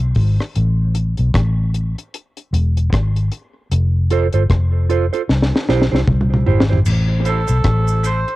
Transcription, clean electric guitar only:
4.11 4.26 F4 medium
4.11 4.26 A4 medium
4.11 4.27 C5 medium
4.34 4.43 F4 medium
4.34 4.42 A4 medium
4.34 4.42 C5 medium
4.89 5.05 F4 medium
4.89 5.05 A4 medium
4.89 5.05 C5 medium
5.13 5.22 F4 medium
5.13 5.21 A4 medium
5.13 5.21 C5 medium
5.69 5.84 E4 medium
5.69 5.84 G4 medium
5.69 5.84 C5 loud
5.92 6.01 E4 medium
5.92 6.00 G4 medium
5.92 6.00 C5 medium
6.46 6.62 E4 medium
6.46 6.62 G4 medium
6.46 6.63 C5 medium
6.70 6.79 E4 soft
6.70 6.79 G4 medium
6.70 6.78 C5 medium
7.25 7.41 E4 medium
7.25 7.41 A4 medium
7.25 7.41 C5 loud
7.47 7.57 E4 medium
7.47 7.57 A4 medium
7.47 7.57 C5 medium
8.03 8.19 E4 medium
8.03 8.20 A4 medium
8.03 8.20 C5 loud
8.27 8.36 E4 medium
8.27 8.36 A4 medium
8.27 8.36 C5 medium

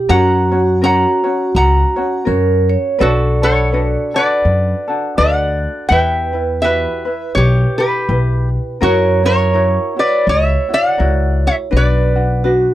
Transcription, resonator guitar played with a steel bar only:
0.09 0.79 F#5 medium
0.09 0.82 A#5 medium
0.84 1.52 F#5 medium
0.84 1.55 A#5 loud
1.56 2.25 F#5 medium
1.56 2.24 A#5 medium
3.01 3.41 F#4 medium
3.01 3.43 A4 medium
3.43 4.12 A4 medium
3.43 4.17 C#5 medium
4.16 5.15 B4 medium
4.16 5.19 D5 medium
5.18 5.88 D5 medium
5.18 5.88 F#5 medium
5.89 6.60 E5 medium
5.89 6.65 G5 loud
6.62 7.33 B4 medium
6.62 7.34 E5 medium
7.35 7.76 G4 medium
7.35 7.75 C#5 medium
7.78 8.48 G4 medium
7.78 8.47 B4 medium
8.83 9.22 F#4 medium
8.83 9.22 A#4 medium
9.25 9.93 A#4 medium
9.25 9.99 C#5 medium
9.99 10.26 B4 medium
9.99 10.26 D5 medium
10.29 10.68 C#5 medium
10.29 10.72 E5 medium
10.74 11.40 D5 medium
10.74 11.47 F#5 loud
11.47 11.55 C#5 medium
11.47 11.55 E5 medium
11.77 12.74 B4 medium
11.77 12.74 D5 medium

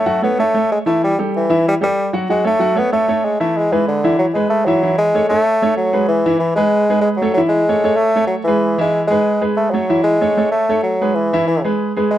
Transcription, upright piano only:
0.06 0.19 F#3 medium
0.06 0.19 F#4 medium
0.06 0.19 F#5 medium
0.22 0.35 A3 medium
0.22 0.36 A4 medium
0.22 0.36 C#5 medium
0.39 0.52 A3 medium
0.39 0.52 A4 medium
0.39 0.52 C#5 medium
0.54 0.80 A3 medium
0.54 0.80 A4 medium
0.54 0.81 C#5 medium
0.86 1.12 E3 medium
0.86 1.12 E4 medium
0.86 1.12 E5 medium
1.19 1.44 G3 medium
1.19 1.44 G4 medium
1.19 1.45 A4 medium
1.50 1.76 E3 medium
1.50 1.76 E4 medium
1.50 1.76 E5 medium
1.81 2.07 G3 medium
1.81 2.07 G4 medium
1.81 2.08 A4 medium
2.13 2.26 F#3 medium
2.13 2.26 F#4 medium
2.13 2.27 F#5 medium
2.30 2.42 F#3 medium
2.30 2.43 F#4 medium
2.30 2.43 F#5 medium
2.44 2.58 A3 medium
2.44 2.58 A4 medium
2.44 2.58 C#5 medium
2.60 2.73 F#3 medium
2.60 2.73 F#4 medium
2.60 2.74 F#5 medium
2.76 2.89 A3 medium
2.76 2.89 A4 medium
2.76 2.89 C#5 medium
2.92 3.05 A3 medium
2.92 3.05 A4 medium
2.92 3.06 C#5 medium
3.08 3.34 A3 medium
3.08 3.35 A4 medium
3.08 3.34 C#5 medium
3.40 3.66 E3 medium
3.40 3.66 E4 medium
3.40 3.66 E5 medium
3.72 3.98 G#3 medium
3.72 3.98 G#4 medium
3.72 3.98 B4 medium
4.04 4.30 E3 medium
4.04 4.30 E4 medium
4.04 4.30 E5 medium
4.35 4.61 G#3 medium
4.35 4.61 G#4 medium
4.35 4.62 B4 medium
4.67 4.80 E3 medium
4.67 4.80 E4 medium
4.67 4.80 E5 medium
4.83 5.09 E3 medium
4.83 5.09 E4 medium
4.83 5.09 E5 medium
5.15 5.28 A3 medium
5.15 5.28 A4 medium
5.15 5.28 C#5 medium
5.31 5.56 A3 medium
5.31 5.57 A4 medium
5.31 5.57 C#5 medium
5.62 5.88 A3 medium
5.62 5.88 A4 medium
5.62 5.88 C#5 medium
5.93 6.19 G#3 medium
5.93 6.19 G#4 medium
5.93 6.20 B4 medium
6.26 6.52 E3 medium
6.26 6.52 E4 medium
6.26 6.52 E5 medium
6.57 6.83 G#3 medium
6.57 6.83 G#4 medium
6.57 6.83 B4 medium
6.90 7.15 G#3 medium
6.90 7.15 G#4 medium
6.90 7.16 B4 medium
7.22 7.34 A3 medium
7.22 7.35 A4 medium
7.22 7.35 C#5 medium
7.37 7.63 E3 medium
7.37 7.63 E4 medium
7.37 7.63 E5 medium
7.69 7.82 A3 medium
7.69 7.82 A4 medium
7.69 7.82 C#5 medium
7.84 8.10 A3 medium
7.84 8.10 A4 medium
7.84 8.10 C#5 medium
8.16 8.42 A3 medium
8.16 8.42 A4 medium
8.16 8.42 C#5 medium
8.47 8.73 G#3 medium
8.47 8.74 G#4 medium
8.47 8.73 B4 medium
8.78 9.04 E3 medium
8.78 9.05 E4 medium
8.78 9.05 E5 medium
9.10 9.36 G#3 medium
9.10 9.37 G#4 medium
9.10 9.37 B4 medium
9.41 9.68 G#3 medium
9.41 9.68 G#4 medium
9.41 9.68 B4 medium
9.74 9.87 A3 medium
9.74 9.87 A4 medium
9.74 9.87 C#5 medium
9.89 10.15 E3 medium
9.89 10.16 E4 medium
9.89 10.16 E5 medium
10.21 10.34 A3 medium
10.21 10.34 A4 medium
10.21 10.34 C#5 medium
10.37 10.63 A3 medium
10.37 10.63 A4 medium
10.37 10.64 C#5 medium
10.69 10.95 A3 medium
10.69 10.95 A4 medium
10.69 10.95 C#5 medium
11.01 11.27 G#3 medium
11.01 11.27 G#4 medium
11.01 11.27 B4 medium
11.33 11.59 E3 medium
11.33 11.59 E4 medium
11.33 11.59 E5 loud
11.64 11.90 G#3 medium
11.64 11.90 G#4 medium
11.64 11.91 B4 medium
11.97 12.18 G#3 medium
11.97 12.18 G#4 medium
11.97 12.18 B4 medium

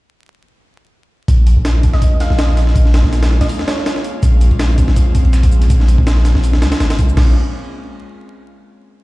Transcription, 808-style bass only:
1.28 1.55 A#1 loud
1.56 1.92 A#1 loud
1.93 2.01 A#1 loud
2.30 2.74 A#1 medium
2.76 3.02 A#1 loud
3.04 3.39 A#1 loud
3.41 3.48 A#1 loud
4.23 4.50 A#1 loud
4.51 4.86 A#1 loud
4.88 4.96 A#1 loud
5.25 5.69 A#1 medium
5.70 5.97 A#1 loud
5.98 6.34 A#1 loud
6.35 6.63 A#1 loud
6.62 6.71 C#2 medium
6.80 7.00 G#1 medium
6.99 7.16 C#2 medium
7.17 7.34 A#1 loud

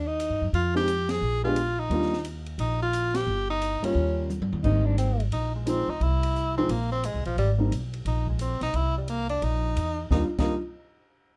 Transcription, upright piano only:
0.75 0.86 G#3 medium
0.75 0.87 C4 medium
0.75 0.87 D#4 medium
0.75 0.87 G4 medium
1.44 1.55 G#3 medium
1.44 1.56 B3 medium
1.44 1.56 D4 medium
1.44 1.56 G4 medium
1.90 2.10 G3 medium
1.90 2.10 A#3 medium
1.90 2.11 D4 medium
1.90 2.11 F4 medium
3.83 4.27 G3 medium
3.83 4.27 A#3 medium
3.83 4.27 C#4 medium
3.83 4.28 F4 medium
4.64 5.16 G3 soft
4.64 5.16 A#3 soft
4.64 5.16 C4 soft
4.64 5.16 D#4 medium
5.66 5.86 F3 medium
5.66 5.86 G#3 soft
5.66 5.86 C4 medium
5.66 5.86 D#4 medium
6.57 6.68 F3 medium
6.57 6.68 G#3 medium
6.57 6.68 C4 medium
6.57 6.69 D#4 medium
7.58 7.70 G3 medium
7.58 7.70 A#3 medium
7.58 7.71 C4 medium
7.58 7.71 D#4 medium
10.11 10.24 G3 medium
10.11 10.24 A#3 medium
10.11 10.24 D4 medium
10.11 10.25 F4 medium
10.39 10.54 G3 medium
10.39 10.54 A#3 medium
10.39 10.54 D4 medium
10.39 10.54 F4 medium

